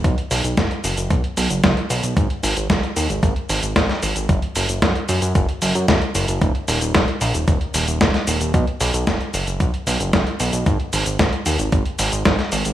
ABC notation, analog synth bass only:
X:1
M:4/4
L:1/16
Q:1/4=113
K:B
V:1 name="Analog synth bass" clef=bass
B,,, z B,,, B,,, F,,, z F,,, F,,, B,,, z B,,, F,,, F,,, z B,,, B,,, | G,,, z G,,, G,,, G,,, z D,, G,,, G,,, z G,,, G,,, G,,, z G,,, G,,, | F,,, z F,,, F,,, F,, z F,, F,, F,,, z F,,, F,, F,,, z F,,, F,,, | D,,, z D,,, D,,, D,,, z A,,, D,,, D,,, z D,,, D,,, D,,, z D,,, D,,, |
B,,, z B,,, B,,, F,,, z F,,, F,,, B,,, z B,,, F,,, F,,, z B,,, B,,, | G,,, z G,,, G,,, G,,, z D,, G,,, G,,, z G,,, G,,, G,,, z G,,, G,,, |]